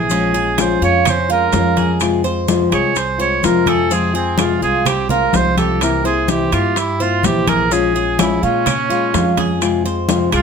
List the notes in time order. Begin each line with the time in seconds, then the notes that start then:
Already playing: A#1 E4 G#4
0.10 F3 G#3 C#4 F4, high bongo, high conga, maracas
0.34 G#3 C#4 F4 G#4, high conga, maracas
0.58 F3 G#3 C#4 F4 C5, high bongo, high conga, high timbale, claves, maracas
0.81 F2 G#3 C#4 F4 C#5, high conga, maracas
1.05 C#4 C5, muted nylon-string guitar stroke, high bongo, high conga, low conga, high timbale, claves, maracas
1.29 G#3 C#4 F4 A#4, high conga, maracas
1.53 F2 F3 G#3 C#4 F4, high bongo, low bongo, high conga, high timbale, low timbale, maracas
1.77 G#4, high conga, high timbale, maracas
2.00 C3 F3 G#3 C4 F4, high bongo, high conga, high timbale, claves, maracas
2.24 G#3 C4 F4 C5, high bongo, high conga, maracas
2.47 C3 F3 G#3 C4 F4, high bongo, high conga, high timbale, maracas
2.72 C2 G#3 C4 F4 G#4 C#5, high bongo, high conga, high timbale, claves, maracas
2.95 C5, muted nylon-string guitar stroke, high bongo, high conga, high timbale, maracas
3.18 G#3 C4 F4 C5 C#5, high conga, maracas
3.42 F2 C3 F3 G#3 C4 F4 A#4, high bongo, low bongo, high conga, high timbale, maracas
3.66 G#4 A4, high bongo, high conga, high timbale, claves, maracas
3.90 C3 F3 G#3 C4 F4 G#4, high bongo, high conga, maracas
4.14 G#3 C4 F4 G#4, high conga, maracas
4.38 C3 F3 G#3 C4 F4, high bongo, high conga, high timbale, claves, maracas
4.61 C2 G#3 C4 F4 G#4, high conga, maracas
4.86 C4 G4, muted nylon-string guitar stroke, high bongo, high conga, low conga, high timbale, claves, maracas
5.09 G#3 C4 F4 A#4, high conga, low conga, maracas
5.33 C2 C3 F3 G#3 C4 F4 C5, high bongo, low bongo, high conga, high timbale, low timbale, maracas
5.57 G4 A4, high conga, high timbale, maracas
5.81 C3 E3 A#3 C4 E4 A#4, high bongo, high conga, high timbale, claves, maracas
6.04 A#3 C4 E4 G#4 C5, high conga, maracas
6.28 C3 E3 A#3 C4 E4 G4, high bongo, high conga, high timbale, maracas
6.52 G2 A#3 C4 E4 F4 G4, high bongo, high conga, high timbale, claves, maracas
6.76 E4, muted nylon-string guitar stroke, high bongo, high conga, high timbale, maracas
7.00 A#3 C4 E4 F4 C5, high conga, maracas
7.23 A#1 C3 E3 A#3 C4 E4 G4, high bongo, low bongo, high conga, high timbale, maracas
7.47 G#4 A#4, high bongo, high conga, high timbale, claves, maracas
7.70 F3 G#3 C#4 F4 G#4, high bongo, high conga, maracas
7.95 G#3 C#4 F4 G#4, high conga, maracas
8.18 F3 G#3 C#4 E4 F4, high bongo, high conga, high timbale, claves, maracas
8.42 A#2 G#3 C#4 F4, high conga, maracas
8.66 C#4, muted nylon-string guitar stroke, high bongo, high conga, low conga, high timbale, claves, maracas
8.90 G#3 C#4 F4, high conga, maracas
9.14 F2 F3 G#3 C#4 F4, high bongo, low bongo, high conga, high timbale, low timbale, maracas
9.37 G#4, high conga, high timbale, maracas
9.61 C3 F3 G#3 C4 F4, high bongo, high conga, high timbale, claves, maracas
9.85 G#3 C4 F4 C5, high bongo, high conga, maracas
10.09 C3 F3 G#3 C4 F4, high bongo, high conga, high timbale, maracas
10.32 C2 G#3 C4 F4 G#4, high bongo, high conga, high timbale, claves, maracas